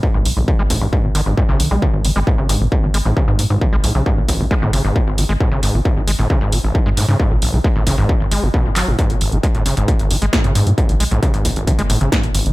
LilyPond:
<<
  \new Staff \with { instrumentName = "Acid bass" } { \clef bass \time 4/4 \key gis \phrygian \tempo 4 = 134 gis,16 gis,16 b,16 gis,,16 gis16 gis16 a,16 gis,16 gis,16 b,16 dis16 gis,16 gis,16 cis16 dis16 gis16 | b,16 gis,,16 gis16 gis16 a,16 cis16 gis,16 b,16 gis,,16 gis16 gis16 a,16 cis16 gis,16 b,16 gis,,16 | gis16 gis16 a,16 cis16 gis,16 b,16 gis,,16 gis16 gis16 a,16 cis16 gis,16 b,16 gis,,16 gis16 gis16 | a,16 cis16 gis,16 b,16 gis,,16 gis16 gis16 a,16 cis16 gis,16 b,16 gis,,16 gis16 gis16 a,16 cis16 |
gis,16 b,16 gis,,16 gis16 gis16 a,16 cis16 gis,16 b,16 gis,,16 gis16 gis,16 b,16 gis,16 fis16 gis,16 | gis,16 b,16 gis,,16 gis16 gis16 a,16 cis16 gis,16 b,16 gis,,16 gis16 gis16 a,16 cis16 gis,16 b,16 | gis,,16 gis16 gis16 a,16 cis16 gis,16 b,16 gis,,16 gis16 gis16 a,16 cis16 gis,16 b,16 gis,,16 gis16 | }
  \new Staff \with { instrumentName = "Analog synth bass" } { \clef bass \time 4/4 \key gis \phrygian r16 b,,16 b,,16 b,,16 r16 a,,16 a,,16 a,,16 r16 gis,,16 gis,,16 gis,,16 r16 b,,16 b,,16 b,,16 | r16 gis,,16 gis,,16 gis,,16 r16 gis,,16 gis,,16 gis,,16 r16 gis,,16 gis,,16 a,,16 r16 gis,16 gis,16 gis,16 | r16 b,,16 b,,16 b,,16 r16 a,,16 a,,16 a,,16 r16 gis,,16 gis,,16 gis,,16 r16 gis,,16 gis,,16 gis,,16 | r16 gis,,16 gis,,16 gis,,16 r16 gis,,16 gis,,16 gis,,16 r16 gis,,16 gis,,16 a,,16 r16 gis,16 gis,16 gis,16 |
r16 b,,16 b,,16 b,,16 r16 a,,16 a,,16 a,,16 r16 gis,,16 gis,,16 gis,,16 r16 gis,,16 gis,,16 gis,,16 | r16 gis,,16 gis,,16 gis,,16 r16 gis,,16 gis,,16 gis,,16 r16 gis,,16 gis,,16 a,,16 r16 gis,16 gis,16 gis,16 | r16 b,,16 b,,16 b,,16 r16 a,,16 a,,16 a,,16 r16 gis,,16 gis,,16 gis,,16 r16 gis,,16 gis,,16 gis,,16 | }
  \new DrumStaff \with { instrumentName = "Drums" } \drummode { \time 4/4 bd8 hho8 bd8 <hho bd>8 bd8 hho8 bd8 hho8 | bd8 hho8 bd8 hho8 bd8 hho8 bd8 hho8 | bd8 hho8 bd8 <hho bd>8 bd8 hho8 bd8 hho8 | bd8 hho8 bd8 hho8 bd8 hho8 bd8 hho8 |
bd8 hho8 bd8 <hho bd>8 bd8 hho8 bd8 <hc hho>8 | <hh bd>16 hh16 hho16 hh16 <hh bd>16 hh16 hho16 hh16 <hh bd>16 hh16 hho16 hh16 <hh bd sn>16 hh16 hho16 hh16 | <hh bd>16 hh16 hho16 hh16 <hh bd>16 hh16 <hho bd>16 hh16 <hh bd>16 hh16 hho16 hh16 <hh bd sn>16 hh16 hho16 hh16 | }
>>